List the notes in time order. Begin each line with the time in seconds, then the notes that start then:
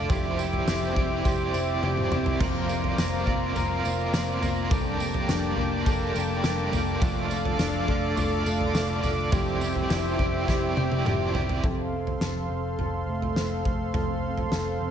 Already playing: A3 D4 A4 D6
0.09 F1 F2 F3 C4 E4 G4 C5 D5 E5 G5, kick, floor tom, tambourine
0.38 C4 E4 G4 D5, tambourine
0.53 floor tom
0.67 F1 F3 C4 E4 G4 D5, snare, tambourine
0.95 F1 C4 G4 D5, kick, floor tom
0.99 E4
1.24 F1 C4 E4 G4, kick, floor tom, tambourine
1.28 D5
1.53 F1 C4 G4 D5, tambourine
1.57 E4
1.82 F1 F3 C4 E4 G4 D5, high tom
1.97 mid tom
2.10 F1 C4 G4 D5, mid tom
2.15 E4
2.26 floor tom
2.40 F1 F2 F3 A#3 C4 F4 A#4 D5 F5 A#5, kick, floor tom, crash, tambourine
2.68 A#3 F4 A#4 D5, tambourine
2.72 C4
2.84 floor tom
2.97 F1 F3 A#3 C4 F4 A#4 D5, snare, tambourine
3.26 F1 A#3 F4 A#4 D5, kick, floor tom
3.30 C4
3.55 F1 C4 F4 A#4, floor tom, tambourine
3.59 D5
3.83 F1 A#3 F4 A#4 D5, tambourine
3.87 C4
4.12 F1 F3 A#3 C4 F4 A#4 D5, snare, tambourine
4.40 F1 A#3 F4 A#4 D5, floor tom, tambourine
4.45 C4
4.70 F1 F2 G3 A#3 D4 G4 A4 A#4 D5 G5 A5 D6, kick, floor tom, tambourine
4.98 A#3 A#4 D5, tambourine
5.03 G4
5.14 floor tom
5.28 F1 G3 D4 G4 A#4 D5, snare, tambourine
5.56 F1 A#3 A#4 D5, floor tom
5.60 G4
5.85 F1 D4 G4 A4 A#4, kick, floor tom, tambourine
5.89 D5
6.14 F1 A#3 A#4 D5, tambourine
6.18 G4
6.43 F1 G3 D4 G4 A4 A#4 D5, snare, tambourine
6.72 F1 A#3 A#4 D5, floor tom, tambourine
6.76 G4
7.01 F1 F2 F3 A3 D4 F4 A4 D5 F5, kick, floor tom, tambourine
7.30 A3 A4 D5, tambourine
7.34 D4
7.45 floor tom
7.58 F1 F3 A3 D4 A4 D5, snare, tambourine
7.86 F1 A3 A4 D5, kick
7.91 D4
8.16 F1 A3 D4 F4 A4, floor tom, tambourine
8.20 D5
8.44 F1 A3 A4 D5, tambourine
8.49 D4
8.61 floor tom
8.73 F1 F3 A3 D4 F4 A4 D5, snare, tambourine
9.02 F1 A3 D4 A4 D5, floor tom, tambourine
9.31 F1 F2 F3 C4 E4 G4 C5 D5 E5 G5, kick, floor tom, tambourine
9.60 C4 E4 G4 D5, tambourine
9.76 floor tom
9.89 F1 F3 C4 E4 G4 D5, snare, tambourine
10.18 F1 C4 G4 D5, kick, floor tom
10.22 E4
10.46 F1 C4 E4 G4, kick, snare
10.50 D5
10.75 F1 C4 G4 D5, high tom
10.80 E4
10.92 high tom
11.05 F1 F3 C4 E4 G4 D5, mid tom
11.33 F1 C4 G4 D5, floor tom
11.38 E4
11.49 floor tom
11.63 F1 F2 A4 C5 F5 C6, kick, floor tom
11.93 C4
12.07 floor tom
12.21 F1 A4, snare
12.50 F1 C4
12.78 F1 A4, floor tom
13.07 F1 A3
13.22 floor tom
13.36 F1 C4, snare
13.65 F1 A3, kick, floor tom
13.94 F1 F2 A4, floor tom
14.23 C4
14.38 floor tom
14.52 F1 A4, snare
14.81 F1 C4